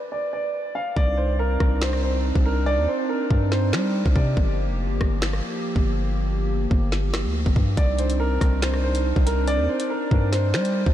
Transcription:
0.12 0.31 D5 medium
0.33 0.73 D5 medium
0.75 0.95 F5 medium
0.96 1.58 C2 loud
0.96 4.34 C4 medium
0.96 4.34 D4 medium
0.96 4.34 D#4 medium
0.96 1.16 D5 loud
0.96 kick loud
1.17 1.37 C5 medium
1.39 1.79 A#4 medium
1.60 2.32 C2 loud
1.60 kick loud
1.60 cross-stick medium
1.82 2.01 C5 medium
1.82 finger snap medium
1.82 snare loud
1.93 cross-stick medium
2.03 2.43 C5 medium
2.35 2.79 C2 loud
2.35 kick loud
2.46 2.65 A#4 medium
2.66 2.86 D5 loud
2.78 2.87 D#2 loud
2.88 3.08 C5 medium
3.09 3.49 A#4 medium
3.30 3.75 G2 loud
3.30 kick loud
3.52 3.71 C5 medium
3.52 snare medium
3.73 4.04 G3 loud
3.73 4.13 C5 medium
3.73 finger snap loud
3.73 snare loud
4.06 4.15 C2 loud
4.06 kick loud
4.15 4.36 C3 loud
4.15 4.35 D5 medium
4.15 kick loud
4.37 4.71 G1 loud
4.37 7.74 F3 medium
4.37 7.74 A#3 medium
4.37 7.74 G4 medium
4.37 kick loud
4.70 4.87 F1 loud
4.85 5.00 G1 loud
5.01 5.42 G1 loud
5.01 kick loud
5.01 cross-stick loud
5.22 finger snap medium
5.22 snare loud
5.33 cross-stick medium
5.76 6.67 G1 loud
5.76 kick loud
6.71 7.26 G1 loud
6.71 kick loud
6.92 snare medium
7.14 finger snap medium
7.14 cross-stick loud
7.14 snare loud
7.25 7.45 D2 loud
7.46 7.55 G1 loud
7.46 kick loud
7.56 7.76 G2 loud
7.56 kick loud
7.77 8.39 C2 loud
7.77 10.94 C4 medium
7.77 10.94 D4 medium
7.77 10.94 D#4 medium
7.77 7.97 D5 medium
7.77 kick loud
7.77 closed hi-hat medium
7.99 8.18 C5 medium
7.99 closed hi-hat medium
8.10 closed hi-hat medium
8.20 8.60 A#4 medium
8.41 9.13 C2 loud
8.41 kick loud
8.41 cross-stick loud
8.41 closed hi-hat medium
8.62 8.82 C5 medium
8.62 finger snap medium
8.62 snare loud
8.62 closed hi-hat medium
8.74 cross-stick medium
8.84 9.24 C5 medium
8.95 closed hi-hat medium
9.16 9.60 C2 loud
9.16 kick loud
9.26 9.46 A#4 medium
9.26 closed hi-hat medium
9.48 9.67 D5 loud
9.48 closed hi-hat medium
9.59 9.68 D#2 loud
9.69 9.88 C5 medium
9.80 closed hi-hat medium
9.90 10.30 A#4 medium
10.11 10.55 G2 loud
10.11 kick loud
10.32 10.52 C5 medium
10.32 snare medium
10.32 closed hi-hat medium
10.54 10.85 G3 loud
10.54 10.94 C5 medium
10.54 finger snap medium
10.54 snare loud
10.65 closed hi-hat medium
10.86 10.94 C2 loud
10.86 kick loud

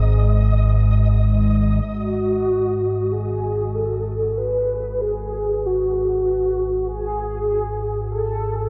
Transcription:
0.00 1.85 G#1 medium
0.00 1.85 G#2 medium
0.00 1.90 D#5 medium
1.86 8.69 G#1 medium
1.86 8.69 G#2 medium
1.86 3.13 F#4 loud
3.12 3.76 G#4 loud
3.75 4.39 A4 loud
4.37 5.02 B4 loud
5.01 5.67 G#4 loud
5.66 6.87 F#4 medium
6.88 8.08 G#4 loud
8.11 8.69 A4 loud

